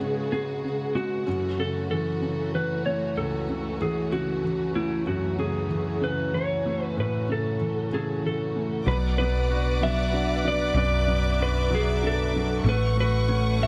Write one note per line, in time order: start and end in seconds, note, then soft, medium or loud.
0.00 1.23 G#2 medium
0.00 0.64 C#3 soft
0.00 1.23 C#3 medium
0.00 0.32 G#3 soft
0.00 1.23 G#3 medium
0.00 1.22 B3 medium
0.00 8.82 F#4 medium
0.00 0.28 G#4 medium
0.32 0.93 G#3 soft
0.32 0.97 G#4 medium
0.64 1.25 C#3 soft
0.95 1.26 G#3 soft
0.95 1.60 F#4 medium
1.26 3.13 F#2 soft
1.26 8.82 E3 medium
1.26 8.83 A3 medium
1.26 8.82 C#4 medium
1.58 2.20 C#3 soft
1.58 1.89 A4 medium
1.91 2.53 E3 soft
1.91 2.55 A4 medium
2.21 3.44 C#3 soft
2.54 3.77 E3 soft
2.54 2.84 B4 medium
2.86 4.08 A3 soft
2.86 3.15 C#5 medium
3.17 5.03 C#2 soft
3.17 3.81 A4 medium
3.49 4.11 C#3 soft
3.81 4.42 E3 soft
3.81 4.12 G#4 medium
4.12 5.35 C#3 soft
4.12 4.75 F#4 medium
4.44 5.66 E3 soft
4.75 5.98 A3 soft
4.75 5.07 E4 medium
5.07 6.93 F#2 medium
5.07 5.39 F#4 medium
5.38 5.99 C#3 soft
5.38 6.04 G#4 medium
5.69 6.32 E3 soft
6.00 7.24 C#3 soft
6.00 6.35 B4 medium
6.34 7.56 E3 soft
6.34 6.83 C#5 medium
6.66 7.88 A3 soft
6.83 6.99 B4 medium
6.97 8.82 A2 soft
6.97 7.28 B4 medium
7.29 7.91 C#3 soft
7.29 7.93 A4 medium
7.61 8.23 E3 soft
7.92 8.84 C#3 soft
7.92 8.25 G#4 medium
7.92 8.25 A4 medium
8.24 8.85 E3 soft
8.24 8.90 A4 medium
8.56 8.86 A3 soft
8.85 10.72 B1 loud
8.85 10.71 B2 medium
8.85 10.75 F#3 medium
8.85 12.61 B4 medium
8.85 8.96 B4 medium
8.85 12.61 D5 medium
8.85 10.73 F#5 medium
8.85 12.61 D6 medium
9.18 9.81 F#3 soft
9.18 9.79 B3 medium
9.18 9.83 B4 medium
9.49 10.43 D4 medium
9.49 10.73 F#4 medium
9.80 10.43 F#3 medium
9.80 11.06 B3 medium
9.80 10.47 E5 medium
10.12 11.35 D4 soft
10.12 12.01 F#4 medium
10.44 11.06 F#3 medium
10.44 11.37 D4 medium
10.44 10.76 D5 medium
10.74 12.60 B1 medium
10.74 12.61 F#2 medium
10.74 13.67 F#3 medium
10.74 11.42 D5 medium
10.74 12.63 E5 medium
11.07 11.69 F#3 soft
11.07 11.69 B3 medium
11.39 12.32 D4 medium
11.39 12.62 F#4 medium
11.39 11.73 B4 medium
11.70 12.35 F#3 medium
11.70 12.65 B3 medium
11.75 12.05 G#4 medium
12.02 12.64 D4 medium
12.02 13.67 F#4 medium
12.07 12.69 A4 medium
12.33 12.65 F#3 medium
12.33 12.71 D4 medium
12.64 13.67 A1 medium
12.64 13.67 A3 medium
12.64 12.95 A3 medium
12.64 13.27 A3 medium
12.64 13.67 F#5 medium
12.64 13.67 C#6 medium
12.69 12.99 B4 medium
12.97 13.58 A3 medium
12.97 13.60 F#4 soft
12.97 13.63 B4 medium
13.28 13.67 A3 medium
13.28 13.67 C#4 medium
13.60 13.67 A3 medium
13.60 13.67 F#4 medium
13.60 13.67 E5 loud